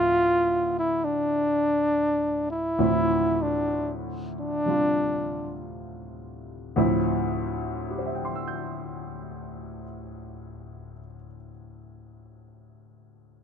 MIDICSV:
0, 0, Header, 1, 3, 480
1, 0, Start_track
1, 0, Key_signature, -1, "minor"
1, 0, Tempo, 840336
1, 1071, Tempo, 882353
1, 1551, Time_signature, 4, 2, 24, 8
1, 1551, Tempo, 943396
1, 2511, Tempo, 1027397
1, 2991, Tempo, 1090909
1, 3471, Tempo, 1117318
1, 6338, End_track
2, 0, Start_track
2, 0, Title_t, "Flugelhorn"
2, 0, Program_c, 0, 56
2, 0, Note_on_c, 0, 65, 91
2, 441, Note_off_c, 0, 65, 0
2, 449, Note_on_c, 0, 64, 72
2, 595, Note_on_c, 0, 62, 74
2, 604, Note_off_c, 0, 64, 0
2, 1405, Note_off_c, 0, 62, 0
2, 1413, Note_on_c, 0, 64, 76
2, 1889, Note_on_c, 0, 62, 68
2, 1897, Note_off_c, 0, 64, 0
2, 2142, Note_off_c, 0, 62, 0
2, 2385, Note_on_c, 0, 62, 77
2, 2986, Note_off_c, 0, 62, 0
2, 6338, End_track
3, 0, Start_track
3, 0, Title_t, "Grand piano"
3, 0, Program_c, 1, 0
3, 0, Control_c, 1, 64, 127
3, 0, Note_on_c, 1, 38, 58
3, 0, Note_on_c, 1, 45, 48
3, 0, Note_on_c, 1, 53, 53
3, 0, Note_on_c, 1, 60, 51
3, 0, Note_on_c, 1, 76, 61
3, 1538, Note_off_c, 1, 38, 0
3, 1546, Note_off_c, 1, 45, 0
3, 1553, Note_off_c, 1, 53, 0
3, 1559, Note_off_c, 1, 60, 0
3, 1564, Note_on_c, 1, 38, 53
3, 1566, Note_off_c, 1, 76, 0
3, 1568, Note_on_c, 1, 45, 46
3, 1568, Note_on_c, 1, 53, 47
3, 1570, Note_on_c, 1, 60, 45
3, 1571, Note_on_c, 1, 64, 54
3, 2518, Note_on_c, 1, 48, 38
3, 2525, Note_on_c, 1, 55, 31
3, 2530, Note_on_c, 1, 62, 35
3, 2536, Note_on_c, 1, 65, 43
3, 3463, Note_off_c, 1, 38, 0
3, 3466, Note_off_c, 1, 45, 0
3, 3467, Note_off_c, 1, 53, 0
3, 3469, Note_on_c, 1, 38, 62
3, 3471, Note_off_c, 1, 60, 0
3, 3473, Note_off_c, 1, 64, 0
3, 3473, Note_on_c, 1, 45, 58
3, 3474, Note_off_c, 1, 48, 0
3, 3474, Note_on_c, 1, 53, 56
3, 3476, Control_c, 1, 64, 0
3, 3477, Note_off_c, 1, 55, 0
3, 3478, Note_on_c, 1, 60, 57
3, 3479, Note_off_c, 1, 62, 0
3, 3480, Note_on_c, 1, 64, 68
3, 3482, Note_off_c, 1, 65, 0
3, 3561, Control_c, 1, 64, 127
3, 3961, Note_on_c, 1, 67, 34
3, 3996, Note_on_c, 1, 72, 36
3, 4028, Note_on_c, 1, 76, 33
3, 4067, Note_on_c, 1, 79, 33
3, 4109, Note_on_c, 1, 84, 32
3, 4155, Note_on_c, 1, 88, 31
3, 4207, Note_on_c, 1, 91, 29
3, 4780, Note_off_c, 1, 38, 0
3, 4783, Note_off_c, 1, 45, 0
3, 4784, Note_off_c, 1, 53, 0
3, 4788, Note_off_c, 1, 60, 0
3, 4790, Note_off_c, 1, 64, 0
3, 5254, Note_off_c, 1, 67, 0
3, 5289, Note_off_c, 1, 72, 0
3, 5321, Note_off_c, 1, 76, 0
3, 5360, Note_off_c, 1, 79, 0
3, 5402, Note_off_c, 1, 84, 0
3, 5448, Note_off_c, 1, 88, 0
3, 5500, Note_off_c, 1, 91, 0
3, 6338, End_track
0, 0, End_of_file